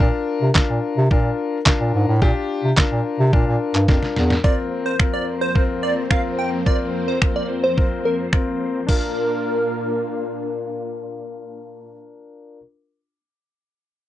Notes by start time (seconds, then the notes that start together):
0.00 D4 F4 A#4, kick
0.41 C3
0.55 D4 F4 A#4, kick, snare, clap
0.69 A#2
0.97 C3
1.10 A#2 D4 F4 A#4, kick
1.66 D4 F4 A#4, kick, snare, clap
1.80 A#2
1.94 G#2
2.08 A2
2.22 A#2 D4 F4 G4, kick
2.63 C3
2.77 D4 F4 A#4, kick, snare, clap
2.91 A#2
3.19 C3
3.33 A#2 D4 F4 A#4, kick
3.47 A#2
3.75 G2, clap
3.88 F2 D4 F4 A#4, kick, snare
4.02 snare
4.16 E2, snare
4.30 snare
4.44 F2 F3 A#3 C4 F4 A#4 C5 D5, kick
4.86 C5
4.99 C4 F4 A#4, finger snap, kick
5.14 D5
5.41 C5
5.55 C4 F4 A#4, kick
5.83 D5
6.11 C4 F4 A#4 F5, finger snap, kick
6.39 G5
6.66 C4 F4 A#4 D5, kick
7.08 C5
7.22 C4 F4 A#4, finger snap, kick
7.36 D5
7.64 C5
7.77 C4 F4 A#4, kick
8.05 A#4
8.33 C4 F4 A#4, finger snap, kick
8.87 A#2 A#3 D4 F4 A#4 F5, kick, crash